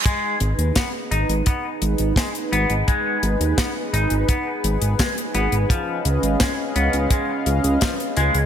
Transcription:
<<
  \new Staff \with { instrumentName = "Analog synth pad" } { \time 4/4 \key gis \minor \tempo 4 = 85 <dis' gis' b'>1~ | <dis' gis' b'>1 | <cis' dis'' eis''>1 | }
  \new Staff \with { instrumentName = "Clean electric guitar" } { \time 4/4 \key gis \minor gis8 r8 b8 dis'8 b8 r8 gis8 b8 | gis8 r8 b8 dis'8 b8 r8 gis8 b8 | eis8 r8 gis8 b8 gis8 r8 eis8 gis8 | }
  \new Staff \with { instrumentName = "Analog synth bass" } { \clef bass \time 4/4 \key gis \minor r8 gis,,16 dis,16 r8 gis,,16 gis,,16 r8 gis,,16 gis,,16 r8 gis,,16 gis,,16 | r8 gis,,16 dis,16 r8 gis,,16 gis,,16 r8 gis,,16 gis,,16 r8 gis,,16 gis,,16 | r8 cis,16 gis,,16 r8 cis,16 cis,16 r8 cis,16 cis,16 r8 cis,16 cis,16 | }
  \new DrumStaff \with { instrumentName = "Drums" } \drummode { \time 4/4 <hh bd>8 hh16 hh16 <hh bd sn>8 hh16 hh16 <hh bd>8 hh16 hh16 <hh bd sn>16 hh16 hh16 hh16 | <hh bd>8 hh16 hh16 <hh bd sn>8 hh16 hh16 <hh bd>8 hh16 hh16 <hh bd sn>16 hh16 hh16 hh16 | <hh bd>8 hh16 hh16 <hh bd sn>8 hh16 hh16 <hh bd>8 hh16 hh16 <hh bd sn>16 hh16 hh16 hh16 | }
>>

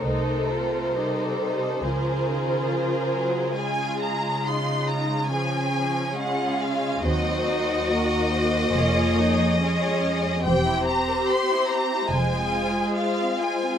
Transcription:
<<
  \new Staff \with { instrumentName = "Violin section" } { \time 4/4 \key des \major \tempo 4 = 69 c''1 | aes''8 bes''8 c'''8 bes''8 aes''4 ges''8 f''8 | ees''1 | g''8 bes''8 c'''8 bes''8 aes''4 f''8 aes''8 | }
  \new Staff \with { instrumentName = "Violin section" } { \time 4/4 \key des \major << { bes'2 bes'4 aes'4 | aes'4 f'4 aes'4 aes'4 | c''4 bes'8 c''8 des''4 des''4 | c''1 | } \\ { a'4 a'4 aes'4 bes'4 | aes'2 aes'4 f'4 | ges'2 aes'4 aes'4 | c'16 e'16 g'16 bes'16 g'16 e'16 c'16 e'16 aes16 c'16 f'16 aes'16 f'16 c'16 aes16 c'16 | } >> }
  \new Staff \with { instrumentName = "Viola section" } { \time 4/4 \key des \major << { ees'8 f'8 ees'8 ees'8 f'2 | f'4 ees'4 des'2 | c'8 ees'8 ges'4 f'8 ees'8 des'4 | g'2 f'2 | } \\ { a4 g4 f8 ees8 f8 ges8 | aes2 f8 f8 aes4 | ges4 bes2 aes4 | c'2 aes2 | } >> }
  \new Staff \with { instrumentName = "Cello section" } { \clef bass \time 4/4 \key des \major c2 des2~ | des1 | ees,2 f,2 | e,4 r4 f,4 r4 | }
  \new Staff \with { instrumentName = "Double bass section" } { \clef bass \time 4/4 \key des \major c,4 r4 des,4 r4 | r1 | ees,4 r4 f,,4 r4 | e,,4 r4 f,,4 r4 | }
>>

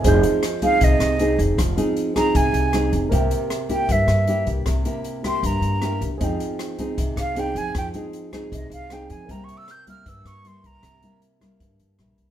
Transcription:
<<
  \new Staff \with { instrumentName = "Flute" } { \time 4/4 \key f \minor \tempo 4 = 156 r4. f''8 ees''4. r8 | r4. bes''8 aes''4. r8 | r4. g''8 e''4. r8 | r4. c'''8 bes''4. r8 |
r2 r8 f''8 g''8 aes''8 | g''8 r4. ees''8 f''8 g''8 aes''8 | \tuplet 3/2 { bes''8 des'''8 e'''8 } g'''8 f'''8 e'''8 des'''8 c'''8 bes''8~ | bes''4 r2. | }
  \new Staff \with { instrumentName = "Grand piano" } { \time 4/4 \key f \minor <aes' c'' ees'' g'''>1~ | <aes' c'' ees'' g'''>1 | <bes' c'' e'' g''>1~ | <bes' c'' e'' g''>1 |
<aes' c'' ees'' g''>1~ | <aes' c'' ees'' g''>1 | <bes' c'' e'' g''>1~ | <bes' c'' e'' g''>1 | }
  \new Staff \with { instrumentName = "Nylon-string guitar" } { \time 4/4 \key f \minor << { <c' ees' aes'>4 r8 <c' ees' aes'>4. <c' ees' aes'>4 | r8 <c' ees' aes'>4 <c' ees' aes'>4. <c' ees' aes'>4 | <bes e' g'>4 r8 <bes e' g'>4. <bes e' g'>4~ | <bes e' g'>8 <bes e' g'>4 <bes e' g'>4. <bes e' g'>8 r8 |
<c' ees' aes'>4. <c' ees' aes'>4. <c' ees' aes'>4~ | <c' ees' aes'>8 <c' ees' aes'>4 <c' ees' aes'>4. <c' ees' aes'>4 | <g bes e'>4 r8 <g bes e'>4. <g bes e'>4~ | <g bes e'>8 <g bes e'>4 <g bes e'>4. <g bes e'>4 | } \\ { f2 c2 | f2 c2 | c2 g,2 | c2 g,2 |
f2 c2 | f2 c2 | c2 g,2 | c2 g,2 | } >> }
  \new Staff \with { instrumentName = "Upright bass" } { \clef bass \time 4/4 \key f \minor f,,8 r4. c,8 c,4 f,,8 | f,,8 r4. c,8 c,4 f,,8 | c,8 r4. g,8 g,4 c,8 | c,8 r4. g,8 g,4 c,8 |
f,8 r4. c,8 c,4 f,8 | f,8 r4. c,8 c,4 f,8 | c,8 r4. g,8 g,4 c,8 | c,8 r4. g,8 g,8 bes,,8 c,8 | }
  \new DrumStaff \with { instrumentName = "Drums" } \drummode { \time 4/4 <hh bd>8 hh8 <hh ss>8 <hh bd>8 <hh bd>8 <hh ss>8 hh8 <hh bd>8 | <hh bd ss>8 hh8 hh8 <hh bd ss>8 <hh bd>8 hh8 <hh ss>8 <hh bd>8 | <hh bd>8 hh8 <hh ss>8 <hh bd>8 <hh bd>8 <hh ss>8 hh8 <hh bd>8 | <hh bd ss>8 hh8 hh8 <hh bd ss>8 <hh bd>8 hh8 <hh ss>8 <hh bd>8 |
<hh bd>8 hh8 <hh ss>8 <hh bd>8 <hh bd>8 <hh ss>8 hh8 <hh bd>8 | <hh bd ss>8 hh8 hh8 <hh bd ss>8 <hh bd>8 hh8 <hh ss>8 <hh bd>8 | <hh bd>8 hh8 <hh ss>8 <hh bd>8 <hh bd>8 <hh ss>8 hh8 <hh bd>8 | <hh bd ss>8 hh8 hh8 <hh bd ss>8 <hh bd>8 hh8 <hh ss>8 <hh bd>8 | }
>>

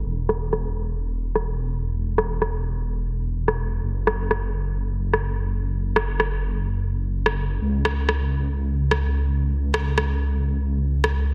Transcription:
<<
  \new Staff \with { instrumentName = "Detuned saw bass" } { \clef bass \time 4/4 \key cis \dorian \tempo 4 = 127 e,,1~ | e,,1 | fis,,1~ | fis,,1 |
cis,1~ | cis,1 | }
  \new DrumStaff \with { instrumentName = "Drums" } \drummode { \time 4/4 r8 ss8 ss4 r8. ss16 r4 | r8 ss8 ss4 r4 r16 ss8. | r8 ss8 ss4 r8. ss16 r4 | r8 ss8 ss4 r4 r16 ss8. |
r8 ss8 ss4 r8. ss16 r4 | r8 ss8 ss4 r4 r16 ss8. | }
>>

